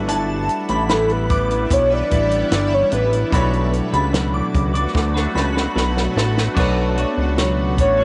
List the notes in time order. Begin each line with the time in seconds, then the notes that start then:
Already playing: G1 E3 G3 B3 D4 E4 A4 B4
0.08 G3 D4 E4 B4 A5, closed hi-hat
0.49 closed hi-hat
0.68 A1 D4 E4 B4 B5, closed hi-hat
0.89 G3 D4 E4 A4 B4 B5, snare, closed hi-hat
1.09 B4, closed hi-hat
1.30 D6, kick, closed hi-hat
1.50 D4 E4 B4, closed hi-hat
1.70 B1 C#5, kick, closed hi-hat
1.90 D4 E4 B4 D5
2.10 A1 G3 D4 E4 B4, kick, closed hi-hat
2.31 closed hi-hat
2.51 G1 G3 D4 E4 B4 D5, snare, closed hi-hat
2.74 C#5
2.91 A1 G3 D4 E4 B4, closed hi-hat
3.11 D4 E4 B4, closed hi-hat
3.30 B1 B2 F#3 A3 B3 D4 F#4 A4 B4 B5, kick, closed hi-hat
3.35 C#5
3.53 closed hi-hat
3.73 closed hi-hat
3.92 C#2 A3 D4 F#4 B4 B5, closed hi-hat
4.13 B2 F#3 A3 D4 F#4 B4, snare, closed hi-hat
4.34 D6
4.54 C#2, kick, closed hi-hat
4.73 A3 D4 F#4 B4 D6, closed hi-hat
4.95 D2, kick, snare
5.14 A3 D4 F#4 B4, snare
5.34 C#2 A3 D4 F#4 B4 B5, snare
5.54 A3 D4 F#4 B4, snare
5.74 B1 B2 F#3 A3 D4 F#4 B4, snare
5.97 snare
6.15 A1 A3 D4 F#4 B4, snare
6.35 A3 D4 F#4 B4, snare
6.54 B1 B2 F#3 A3 B3 D4 F#4 A4 C#5, kick, crash
6.60 B4
6.96 A3 D4 F#4 C#5, closed hi-hat
7.17 C#2
7.37 B2 F#3 A3 D4 F#4 C#5, snare, closed hi-hat
7.78 A1 A3 D4 F#4 C#5, kick, closed hi-hat
7.98 A3 D4 F#4 C#5